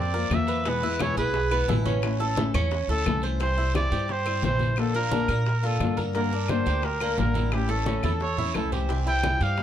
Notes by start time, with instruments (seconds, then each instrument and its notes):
Already playing: upright bass F2, cuban tres C4
0.00 trumpet D5
0.14 nylon-string guitar A#3 C4 F4, cuban tres A#4, high bongo, high conga
0.30 upright bass E2, nylon-string guitar A#3 C4 F4, high bongo, low bongo, high conga, short guiro, claves
0.34 trumpet E5
0.47 cuban tres B4, short guiro
0.64 nylon-string guitar B2 E3 G#3 B3 E4, cuban tres B3, high bongo, high conga, long guiro
0.69 trumpet B4
0.82 nylon-string guitar G#3 B3 E4, cuban tres E4, high bongo, high conga
0.99 nylon-string guitar B2 E3 G#3 B3 E4, trumpet C#5, high bongo, high conga, short guiro, claves
1.17 upright bass B1, nylon-string guitar G#3 B3 E4, cuban tres G#4, trumpet B4, high bongo, high conga, short guiro
1.34 muted nylon-string guitar stroke, high bongo, high conga, long guiro
1.51 nylon-string guitar G#3 B3 E4, cuban tres B3, high bongo, high conga, claves
1.68 upright bass A1, nylon-string guitar B2 E3 G#3 B3 E4, cuban tres E4, high bongo, low bongo, high conga, short guiro
1.86 cuban tres C#4, high conga, short guiro
2.02 nylon-string guitar E3 A3 C#4 E4, high bongo, high conga, long guiro, claves
2.20 nylon-string guitar A3 C#4 E4, cuban tres A4, high bongo, high conga
2.36 nylon-string guitar E3 A3 C#4 E4, high bongo, high conga, short guiro
2.54 upright bass E2, nylon-string guitar A3 C#4 E4, cuban tres C#4, high bongo, high conga, low conga, short guiro, claves
2.71 muted nylon-string guitar stroke, high bongo, high conga, long guiro
2.88 upright bass D2, nylon-string guitar A3 C#4 E4, cuban tres A4, trumpet A4, high bongo, high conga
3.05 upright bass C2, nylon-string guitar E3 A3 C#4 E4, high bongo, low bongo, high conga, short guiro, claves
3.22 cuban tres C5, short guiro
3.40 nylon-string guitar C3 E3 G3 C4 E4, cuban tres C4, trumpet C5, high bongo, high conga, long guiro
3.58 nylon-string guitar G3 C4 E4, cuban tres E4, high bongo, high conga
3.74 nylon-string guitar C3 E3 G3 C4 E4, trumpet D5, high bongo, high conga, short guiro, claves
3.91 upright bass G2, nylon-string guitar G3 C4 E4, cuban tres G4, high bongo, high conga, short guiro
4.08 trumpet C5, muted nylon-string guitar stroke, high bongo, high conga, long guiro
4.26 nylon-string guitar G3 C4 E4, cuban tres C4, high bongo, high conga, claves
4.42 upright bass A#1, nylon-string guitar C3 E3 G3 C4 E4, trumpet C5, high bongo, low bongo, high conga, short guiro
4.59 high conga, short guiro
4.76 nylon-string guitar D3 A#3 D4 F4, trumpet A4, high bongo, high conga, long guiro, claves
4.94 cuban tres A#3, nylon-string guitar A#3 D4 F4, trumpet A#4, high bongo, high conga
5.11 nylon-string guitar D3 A#3 D4 F4, cuban tres D4, high bongo, high conga, short guiro
5.28 upright bass A#2, nylon-string guitar A#3 D4 F4, cuban tres A#4, high bongo, high conga, short guiro, claves
5.46 muted nylon-string guitar stroke, high bongo, high conga, long guiro
5.63 nylon-string guitar A#3 D4 F4, cuban tres F4, trumpet A4, high bongo, high conga
5.80 upright bass G2, nylon-string guitar D3 A#3 D4 F4, high bongo, low bongo, high conga, short guiro, claves
5.97 cuban tres A#4, high conga, short guiro
6.13 nylon-string guitar D3 G3 A#3 D4 A4, cuban tres A#3, trumpet A#4, high bongo, high conga, long guiro
6.32 nylon-string guitar A#3 D4 A4, cuban tres D4, high bongo, high conga
6.48 nylon-string guitar D3 G3 A#3 D4 A4, trumpet C5, high bongo, high conga, short guiro, claves
6.66 upright bass D2, nylon-string guitar A#3 D4 A4, cuban tres G4, high bongo, high conga, short guiro
6.82 trumpet A#4, muted nylon-string guitar stroke, high bongo, high conga, long guiro
7.01 cuban tres A#3, nylon-string guitar A#3 D4 A4, high bongo, high conga, claves
7.17 upright bass A1, nylon-string guitar D3 G3 A#3 D4, trumpet A#4, high bongo, low bongo, high conga, short guiro
7.34 cuban tres E4, high conga, short guiro
7.52 nylon-string guitar E3 A3 C#4 E4, trumpet G4, high bongo, high conga, long guiro, claves
7.69 cuban tres A3, nylon-string guitar A3 C#4 E4, trumpet A4, high bongo, high conga
7.86 nylon-string guitar E3 A3 C#4 E4, cuban tres C#4, high bongo, high conga, short guiro
8.03 upright bass E2, nylon-string guitar A3 C#4 E4, trumpet E4, cuban tres A4, high bongo, high conga, short guiro, claves
8.20 trumpet C#5, muted nylon-string guitar stroke, high bongo, long guiro
8.38 nylon-string guitar A3 C#4 E4, cuban tres E4, high bongo, low conga
8.54 upright bass C2, nylon-string guitar E3 A3 C#4 E4, trumpet A4, high bongo, low bongo, short guiro, claves
8.72 trumpet G4, cuban tres C5, low conga, short guiro
8.89 nylon-string guitar C3 E3 G3 C4 E4, cuban tres C4, high bongo, high conga, long guiro
9.06 nylon-string guitar G3 C4 E4, cuban tres E4, trumpet G5, high bongo, high conga
9.23 nylon-string guitar C3 E3 G3 C4 E4, high bongo, high conga, short guiro, claves
9.40 upright bass G2, nylon-string guitar G3 C4 E4, cuban tres G4, trumpet F5, high bongo, high conga, short guiro
9.57 muted nylon-string guitar stroke, high bongo, high conga, long guiro